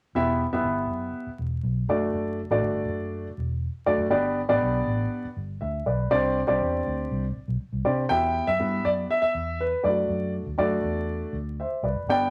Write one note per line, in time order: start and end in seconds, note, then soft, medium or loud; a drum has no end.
0.15 0.44 E1 medium
0.15 0.43 B3 medium
0.15 0.43 E4 medium
0.15 0.43 G4 medium
0.15 0.44 E5 loud
0.53 0.62 F#1 medium
0.53 1.28 B3 medium
0.53 1.28 E4 medium
0.53 1.28 G4 medium
0.53 1.28 E5 medium
0.64 0.84 G1 loud
0.89 1.09 F#1 medium
1.27 muted fingered electric bass stroke soft
1.39 1.59 E1 medium
1.63 1.83 B1 medium
1.88 2.08 F#1 medium
1.88 2.38 A3 medium
1.88 2.39 D4 medium
1.88 2.39 F#4 medium
1.88 2.39 D5 medium
2.13 2.43 F#1 medium
2.50 2.60 A1 medium
2.50 3.26 A3 medium
2.50 3.26 D4 medium
2.50 3.26 F#4 medium
2.50 3.26 D5 medium
2.63 2.82 G1 medium
2.87 3.27 F#1 medium
3.38 3.67 E1 medium
3.86 3.97 F#1 medium
3.86 4.06 A3 medium
3.86 4.06 D4 medium
3.86 4.06 F#4 medium
3.86 4.06 D5 medium
3.99 4.09 F#1 medium
4.10 4.41 G1 medium
4.10 4.40 B3 medium
4.10 4.40 D4 medium
4.10 4.40 G4 medium
4.10 4.40 D5 medium
4.49 4.59 A1 medium
4.49 5.25 B3 medium
4.49 5.25 D4 medium
4.49 5.25 G4 medium
4.49 5.25 D5 loud
4.62 4.82 B1 medium
4.86 5.06 A1 medium
5.25 muted fingered electric bass stroke soft
5.37 5.56 G1 medium
5.61 5.81 D2 medium
5.61 5.85 E5 medium
5.86 6.06 B1 medium
5.86 6.34 B4 medium
5.86 6.09 D5 medium
6.11 6.39 C4 medium
6.11 6.39 D4 medium
6.11 6.39 G4 medium
6.11 6.39 D5 loud
6.47 6.58 C2 medium
6.47 7.23 C4 medium
6.47 7.24 D4 medium
6.47 7.24 G4 medium
6.47 7.24 D5 medium
6.62 6.81 E2 medium
6.87 7.06 D2 medium
7.11 7.30 C2 medium
7.36 muted fingered electric bass stroke soft
7.48 7.58 B1 medium
7.60 muted fingered electric bass stroke soft
7.72 7.82 C2 medium
7.85 8.05 C3 medium
7.85 8.04 C4 medium
7.85 8.04 D4 medium
7.85 8.04 G4 medium
7.85 8.04 D5 medium
8.09 8.40 E2 medium
8.09 8.48 B3 medium
8.09 8.48 E4 medium
8.09 8.16 F#4 soft
8.09 8.48 E5 medium
8.09 8.48 G5 loud
8.16 8.51 G4 medium
8.47 8.57 F#2 medium
8.47 8.86 E5 medium
8.59 8.79 G2 medium
8.59 9.35 B3 medium
8.59 9.35 E4 medium
8.59 9.35 G4 medium
8.59 9.35 E5 medium
8.85 9.04 F#2 medium
8.85 8.90 D5 medium
9.10 9.20 E5 medium
9.22 9.60 E5 medium
9.22 muted fingered electric bass stroke soft
9.35 9.74 E2 medium
9.60 9.85 B4 medium
9.83 10.04 F#2 medium
9.83 10.44 A3 medium
9.83 10.43 D4 medium
9.83 9.90 E4 soft
9.83 10.44 D5 medium
9.83 10.31 D5 medium
9.89 10.47 F#4 medium
10.09 10.39 F#2 medium
10.46 10.56 D2 medium
10.58 10.78 F#2 medium
10.58 11.34 A3 medium
10.58 11.34 D4 medium
10.58 11.34 F#4 medium
10.58 11.34 D5 medium
10.83 11.23 E2 medium
11.33 11.63 D2 medium
11.60 11.83 C5 medium
11.60 11.83 E5 medium
11.83 11.93 C2 medium
11.83 12.30 B4 medium
11.83 12.08 D5 medium
11.95 12.05 F#1 medium
12.07 12.30 G1 medium
12.07 12.30 B3 medium
12.07 12.30 D4 medium
12.07 12.30 G4 medium
12.07 12.30 D5 medium
12.07 12.30 G5 loud